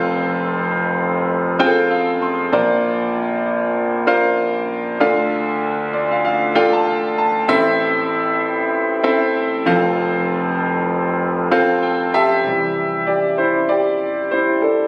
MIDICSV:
0, 0, Header, 1, 2, 480
1, 0, Start_track
1, 0, Tempo, 620476
1, 39, Time_signature, 4, 2, 24, 8
1, 11507, End_track
2, 0, Start_track
2, 0, Title_t, "Grand piano"
2, 0, Program_c, 0, 0
2, 0, Control_c, 0, 64, 127
2, 0, Note_on_c, 0, 29, 70
2, 0, Note_on_c, 0, 41, 68
2, 0, Note_on_c, 0, 60, 80
2, 0, Note_on_c, 0, 65, 76
2, 0, Note_on_c, 0, 69, 82
2, 0, Note_on_c, 0, 72, 81
2, 0, Note_on_c, 0, 77, 100
2, 627, Note_off_c, 0, 65, 0
2, 628, Note_off_c, 0, 60, 0
2, 628, Note_off_c, 0, 69, 0
2, 628, Note_off_c, 0, 77, 0
2, 629, Note_off_c, 0, 72, 0
2, 1232, Note_on_c, 0, 60, 82
2, 1234, Note_on_c, 0, 65, 80
2, 1235, Note_on_c, 0, 68, 63
2, 1236, Note_on_c, 0, 72, 77
2, 1236, Note_on_c, 0, 79, 89
2, 1286, Note_on_c, 0, 69, 81
2, 1292, Note_off_c, 0, 68, 0
2, 1474, Note_on_c, 0, 77, 71
2, 1686, Note_off_c, 0, 29, 0
2, 1686, Note_off_c, 0, 41, 0
2, 1697, Note_off_c, 0, 77, 0
2, 1718, Note_on_c, 0, 84, 64
2, 1858, Note_off_c, 0, 60, 0
2, 1858, Note_off_c, 0, 65, 0
2, 1860, Note_off_c, 0, 72, 0
2, 1860, Note_off_c, 0, 79, 0
2, 1885, Note_off_c, 0, 69, 0
2, 1939, Note_off_c, 0, 84, 0
2, 1953, Note_on_c, 0, 62, 87
2, 1954, Note_on_c, 0, 34, 73
2, 1954, Note_on_c, 0, 70, 73
2, 1956, Note_on_c, 0, 46, 69
2, 1956, Note_on_c, 0, 65, 74
2, 1957, Note_on_c, 0, 72, 75
2, 1957, Note_on_c, 0, 74, 92
2, 1966, Control_c, 0, 64, 0
2, 2085, Control_c, 0, 64, 127
2, 2780, Note_off_c, 0, 62, 0
2, 2780, Note_off_c, 0, 70, 0
2, 2781, Note_off_c, 0, 65, 0
2, 2782, Note_off_c, 0, 72, 0
2, 2782, Note_off_c, 0, 74, 0
2, 3147, Note_on_c, 0, 62, 80
2, 3149, Note_on_c, 0, 70, 81
2, 3150, Note_on_c, 0, 65, 74
2, 3151, Note_on_c, 0, 72, 78
2, 3153, Note_on_c, 0, 77, 93
2, 3773, Note_off_c, 0, 62, 0
2, 3774, Note_off_c, 0, 70, 0
2, 3775, Note_off_c, 0, 65, 0
2, 3775, Note_off_c, 0, 72, 0
2, 3776, Note_off_c, 0, 77, 0
2, 3839, Note_off_c, 0, 34, 0
2, 3840, Note_off_c, 0, 46, 0
2, 3870, Note_on_c, 0, 65, 75
2, 3871, Note_on_c, 0, 62, 87
2, 3871, Note_on_c, 0, 69, 72
2, 3872, Note_on_c, 0, 74, 70
2, 3873, Note_on_c, 0, 38, 77
2, 3873, Note_on_c, 0, 50, 73
2, 3875, Note_on_c, 0, 77, 95
2, 3882, Control_c, 0, 64, 0
2, 4002, Control_c, 0, 64, 127
2, 4579, Note_off_c, 0, 74, 0
2, 4590, Note_on_c, 0, 74, 68
2, 4697, Note_off_c, 0, 62, 0
2, 4697, Note_off_c, 0, 65, 0
2, 4697, Note_off_c, 0, 69, 0
2, 4699, Note_off_c, 0, 77, 0
2, 4715, Note_off_c, 0, 74, 0
2, 4730, Note_on_c, 0, 77, 66
2, 4821, Note_off_c, 0, 77, 0
2, 4833, Note_on_c, 0, 77, 77
2, 5054, Note_off_c, 0, 77, 0
2, 5067, Note_on_c, 0, 62, 80
2, 5070, Note_on_c, 0, 65, 87
2, 5070, Note_on_c, 0, 79, 77
2, 5071, Note_on_c, 0, 74, 78
2, 5072, Note_on_c, 0, 69, 75
2, 5072, Note_on_c, 0, 77, 92
2, 5194, Note_off_c, 0, 79, 0
2, 5207, Note_on_c, 0, 81, 75
2, 5303, Note_off_c, 0, 81, 0
2, 5305, Note_off_c, 0, 77, 0
2, 5317, Note_on_c, 0, 77, 67
2, 5536, Note_off_c, 0, 77, 0
2, 5556, Note_on_c, 0, 81, 68
2, 5692, Note_off_c, 0, 62, 0
2, 5694, Note_off_c, 0, 65, 0
2, 5694, Note_off_c, 0, 69, 0
2, 5694, Note_off_c, 0, 74, 0
2, 5758, Note_off_c, 0, 38, 0
2, 5758, Note_off_c, 0, 50, 0
2, 5775, Note_off_c, 0, 81, 0
2, 5789, Note_on_c, 0, 60, 88
2, 5790, Note_on_c, 0, 64, 80
2, 5791, Note_on_c, 0, 69, 83
2, 5792, Note_on_c, 0, 33, 77
2, 5792, Note_on_c, 0, 45, 74
2, 5792, Note_on_c, 0, 72, 80
2, 5793, Note_on_c, 0, 76, 104
2, 5796, Control_c, 0, 64, 0
2, 5914, Control_c, 0, 64, 127
2, 6615, Note_off_c, 0, 60, 0
2, 6616, Note_off_c, 0, 64, 0
2, 6616, Note_off_c, 0, 69, 0
2, 6617, Note_off_c, 0, 72, 0
2, 6617, Note_off_c, 0, 76, 0
2, 6990, Note_on_c, 0, 60, 87
2, 6991, Note_on_c, 0, 64, 77
2, 6993, Note_on_c, 0, 69, 79
2, 6993, Note_on_c, 0, 72, 79
2, 6993, Note_on_c, 0, 76, 86
2, 7437, Note_off_c, 0, 33, 0
2, 7437, Note_off_c, 0, 45, 0
2, 7460, Note_off_c, 0, 60, 0
2, 7464, Note_off_c, 0, 69, 0
2, 7464, Note_off_c, 0, 72, 0
2, 7469, Note_off_c, 0, 64, 0
2, 7470, Note_off_c, 0, 76, 0
2, 7472, Note_on_c, 0, 60, 79
2, 7473, Note_on_c, 0, 29, 70
2, 7473, Note_on_c, 0, 65, 75
2, 7474, Note_on_c, 0, 41, 73
2, 7475, Control_c, 0, 64, 0
2, 7475, Note_on_c, 0, 72, 78
2, 7476, Note_on_c, 0, 69, 77
2, 7477, Note_on_c, 0, 77, 96
2, 7615, Control_c, 0, 64, 127
2, 8297, Note_off_c, 0, 60, 0
2, 8298, Note_off_c, 0, 65, 0
2, 8299, Note_off_c, 0, 69, 0
2, 8299, Note_off_c, 0, 72, 0
2, 8300, Note_off_c, 0, 77, 0
2, 8907, Note_on_c, 0, 60, 85
2, 8908, Note_on_c, 0, 65, 79
2, 8909, Note_on_c, 0, 77, 89
2, 8910, Note_on_c, 0, 72, 74
2, 8912, Note_on_c, 0, 69, 79
2, 9132, Note_off_c, 0, 77, 0
2, 9148, Note_on_c, 0, 79, 64
2, 9360, Note_off_c, 0, 29, 0
2, 9361, Note_off_c, 0, 41, 0
2, 9371, Note_off_c, 0, 79, 0
2, 9391, Note_on_c, 0, 81, 64
2, 9392, Note_on_c, 0, 76, 94
2, 9397, Note_on_c, 0, 67, 79
2, 9534, Note_off_c, 0, 60, 0
2, 9534, Note_off_c, 0, 65, 0
2, 9535, Note_off_c, 0, 72, 0
2, 9536, Note_off_c, 0, 69, 0
2, 9613, Note_off_c, 0, 81, 0
2, 9625, Note_on_c, 0, 48, 45
2, 9633, Note_on_c, 0, 52, 36
2, 9637, Control_c, 0, 64, 0
2, 9637, Note_on_c, 0, 55, 48
2, 9799, Control_c, 0, 64, 127
2, 10084, Note_off_c, 0, 67, 0
2, 10108, Note_on_c, 0, 74, 64
2, 10121, Note_on_c, 0, 67, 52
2, 10134, Note_off_c, 0, 76, 0
2, 10318, Note_off_c, 0, 48, 0
2, 10322, Note_off_c, 0, 52, 0
2, 10324, Note_off_c, 0, 55, 0
2, 10333, Note_off_c, 0, 74, 0
2, 10340, Note_off_c, 0, 67, 0
2, 10349, Note_on_c, 0, 72, 58
2, 10360, Note_on_c, 0, 64, 49
2, 10580, Note_off_c, 0, 64, 0
2, 10589, Note_on_c, 0, 74, 69
2, 10598, Note_off_c, 0, 72, 0
2, 10607, Note_on_c, 0, 67, 55
2, 11050, Note_off_c, 0, 67, 0
2, 11072, Note_on_c, 0, 72, 66
2, 11087, Note_off_c, 0, 74, 0
2, 11088, Note_on_c, 0, 64, 46
2, 11305, Note_off_c, 0, 64, 0
2, 11309, Note_on_c, 0, 69, 58
2, 11321, Note_off_c, 0, 72, 0
2, 11324, Note_on_c, 0, 62, 47
2, 11507, Note_off_c, 0, 62, 0
2, 11507, Note_off_c, 0, 69, 0
2, 11507, End_track
0, 0, End_of_file